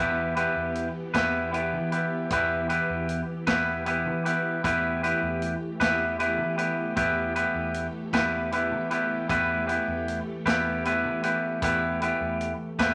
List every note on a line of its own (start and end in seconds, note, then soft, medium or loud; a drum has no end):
0.00 0.46 E2 loud
0.00 12.94 E3 medium
0.00 0.36 B3 medium
0.00 4.60 B3 medium
0.00 0.36 E4 medium
0.00 0.36 G4 loud
0.00 12.94 G4 medium
0.00 0.35 B4 medium
0.37 0.88 B3 medium
0.37 0.88 E4 medium
0.37 0.88 G4 medium
0.37 0.87 B4 medium
0.37 closed hi-hat medium
0.56 0.88 E2 medium
0.75 closed hi-hat medium
1.14 1.75 E2 loud
1.14 1.51 B3 medium
1.14 1.52 E4 medium
1.14 1.53 G4 medium
1.14 1.53 B4 loud
1.14 kick medium
1.14 snare loud
1.14 closed hi-hat medium
1.53 1.92 B3 medium
1.53 1.92 E4 medium
1.53 1.91 G4 medium
1.53 1.91 B4 medium
1.53 closed hi-hat medium
1.73 2.05 E3 medium
1.92 2.30 B3 medium
1.92 2.31 E4 medium
1.92 2.31 G4 medium
1.92 2.31 B4 medium
1.92 closed hi-hat medium
2.30 2.78 E2 loud
2.30 2.70 B3 medium
2.30 2.69 E4 medium
2.30 2.69 G4 medium
2.30 2.68 B4 loud
2.30 kick loud
2.30 closed hi-hat medium
2.69 3.21 B3 medium
2.69 3.21 E4 medium
2.69 3.21 G4 medium
2.69 3.20 B4 medium
2.69 closed hi-hat medium
2.89 3.21 E2 medium
3.09 closed hi-hat medium
3.47 4.08 E2 medium
3.47 3.85 B3 medium
3.47 3.85 E4 medium
3.47 3.86 G4 medium
3.47 3.86 B4 medium
3.47 kick medium
3.47 snare loud
3.47 closed hi-hat medium
3.86 4.25 B3 medium
3.86 4.25 E4 medium
3.86 4.25 G4 medium
3.86 4.24 B4 medium
3.86 closed hi-hat medium
4.06 4.38 E3 medium
4.25 4.63 B3 medium
4.25 4.63 E4 medium
4.25 4.64 G4 medium
4.25 4.64 B4 medium
4.25 closed hi-hat medium
4.64 5.12 E2 loud
4.64 12.94 A3 medium
4.64 5.03 B3 medium
4.64 5.03 E4 medium
4.64 5.03 G4 medium
4.64 5.02 B4 medium
4.64 kick loud
4.64 closed hi-hat loud
5.03 5.54 B3 medium
5.03 5.54 E4 medium
5.03 5.54 G4 medium
5.03 5.54 B4 medium
5.03 closed hi-hat medium
5.22 5.54 E2 medium
5.42 closed hi-hat medium
5.80 6.40 E2 medium
5.80 6.18 B3 medium
5.80 6.18 E4 medium
5.80 6.19 G4 medium
5.80 6.19 B4 loud
5.80 kick medium
5.80 snare medium
5.80 closed hi-hat medium
6.19 6.58 B3 medium
6.19 6.57 E4 medium
6.19 6.57 G4 medium
6.19 6.57 B4 medium
6.19 closed hi-hat medium
6.38 6.70 E3 medium
6.58 6.95 B3 medium
6.58 6.96 E4 medium
6.58 6.96 G4 medium
6.58 6.96 B4 medium
6.58 closed hi-hat medium
6.96 7.44 E2 loud
6.96 7.35 B3 medium
6.96 7.35 E4 medium
6.96 7.35 G4 medium
6.96 7.35 B4 medium
6.96 kick loud
6.96 closed hi-hat medium
7.36 7.87 B3 medium
7.36 7.87 E4 medium
7.36 7.86 G4 medium
7.36 7.86 B4 medium
7.36 closed hi-hat medium
7.55 7.87 E2 medium
7.74 closed hi-hat medium
8.13 8.73 E2 medium
8.13 8.51 B3 medium
8.13 8.52 E4 medium
8.13 8.52 G4 medium
8.13 8.52 B4 loud
8.13 kick medium
8.13 snare loud
8.13 closed hi-hat medium
8.52 8.91 B3 medium
8.52 8.91 E4 medium
8.52 8.90 G4 medium
8.52 8.90 B4 medium
8.52 closed hi-hat medium
8.72 9.03 E3 medium
8.91 9.28 B3 medium
8.91 9.29 E4 medium
8.91 9.29 G4 medium
8.91 9.30 B4 medium
8.91 closed hi-hat medium
9.29 9.77 E2 medium
9.29 9.68 B3 medium
9.29 9.67 E4 medium
9.29 9.67 G4 medium
9.29 9.66 B4 loud
9.29 kick loud
9.29 closed hi-hat medium
9.67 10.19 B3 medium
9.67 10.19 E4 medium
9.67 10.19 G4 medium
9.67 10.18 B4 medium
9.67 closed hi-hat medium
9.88 10.20 E2 medium
10.08 closed hi-hat medium
10.46 11.06 E2 medium
10.46 10.84 B3 medium
10.46 10.85 E4 medium
10.46 10.85 G4 medium
10.46 10.85 B4 medium
10.46 kick medium
10.46 snare loud
10.46 closed hi-hat medium
10.85 11.23 B3 medium
10.85 11.23 E4 medium
10.85 11.23 G4 medium
10.85 11.22 B4 medium
10.85 closed hi-hat medium
11.05 11.36 E3 medium
11.23 11.62 B3 medium
11.23 11.62 E4 medium
11.23 11.63 G4 medium
11.23 11.62 B4 medium
11.23 closed hi-hat medium
11.62 12.10 E2 medium
11.62 12.02 B3 medium
11.62 12.02 E4 medium
11.62 12.01 G4 medium
11.62 12.01 B4 loud
11.62 kick loud
11.62 closed hi-hat loud
12.02 12.53 B3 medium
12.02 12.53 E4 medium
12.02 12.52 G4 medium
12.02 12.52 B4 medium
12.02 closed hi-hat medium
12.21 12.52 E2 medium
12.41 closed hi-hat medium
12.79 12.94 E2 medium
12.79 12.94 B3 medium
12.79 12.94 E4 medium
12.79 12.94 G4 medium
12.79 12.94 B4 medium
12.79 kick medium
12.79 snare loud
12.79 closed hi-hat medium